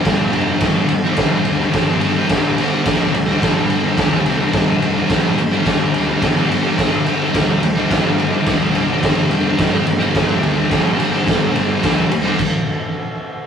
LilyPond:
<<
  \new Staff \with { instrumentName = "Distorted electric guitar" } { \clef bass \time 4/4 \key c \major \tempo 4 = 107 <g, d g>8 <g, d g>8 <g, d g>16 <d g>8 <d g>8 <d g>8 <d g>16 <g, d g>16 <d g>16 <g, d g>16 <d g>16 | <g, d g>8 <g, d g>8 <g, d g>16 <d g>8 <d g>8 <d g>8 <d g>16 <g, d g>16 <d g>16 <g, d g>16 <d g>16 | <g, d g>8 <g, d g>8 <g, d g>16 <d g>8 <d g>8 <d g>8 <d g>16 <g, d g>16 <d g>16 <g, d g>16 <d g>16 | <g, d g>8 <g, d g>8 <g, d g>16 <d g>8 <d g>8 <d g>8 <d g>16 <g, d g>16 <d g>16 <g, d g>16 <d g>16 |
<g, d g>8 <g, d g>8 <g, d g>16 <d g>8 <d g>8 <d g>8 <d g>16 <g, d g>16 <d g>16 <g, d g>16 <d g>16 | <g, d g>8 <g, d g>8 <g, d g>16 <d g>8 <d g>16 r2 | }
  \new Staff \with { instrumentName = "Picked electric bass" } { \clef bass \time 4/4 \key c \major g,,8 f,,8 g,,8 g,,8 g,,8 d,8 g,,4 | g,,8 g,,8 d,8 d,8 g,,4 d,8 c,8 | g,,8 f,,8 g,,8 g,,8 g,,8 d,8 g,,4 | g,,8 g,,8 d,8 d,8 g,,4 d,8 c,8 |
g,,8 f,,8 g,,8 g,,8 g,,8 d,8 g,,4 | g,,8 g,,8 d,8 d,8 r2 | }
  \new DrumStaff \with { instrumentName = "Drums" } \drummode { \time 4/4 <bd cymr sn>8 cymr8 <bd cymr sn>8 cymr8 <bd cymr sn>8 cymr8 <bd cymr sn>8 cymr8 | <bd cymr sn>8 cymr8 <bd cymr sn>8 cymr8 <bd cymr sn>8 cymr8 <bd cymr sn>8 cymr8 | <bd cymr sn>8 cymr8 <bd cymr sn>8 cymr8 <bd cymr sn>8 cymr8 <bd cymr sn>8 cymr8 | <bd cymr sn>8 cymr8 <bd cymr sn>8 cymr8 <bd cymr sn>8 cymr8 <bd cymr sn>8 cymr8 |
<bd cymr sn>8 cymr8 <bd cymr sn>8 cymr8 <bd cymr sn>8 cymr8 <bd cymr sn>8 cymr8 | <bd cymr sn>8 cymr8 <bd cymr sn>8 cymr8 <cymc bd>4 r4 | }
>>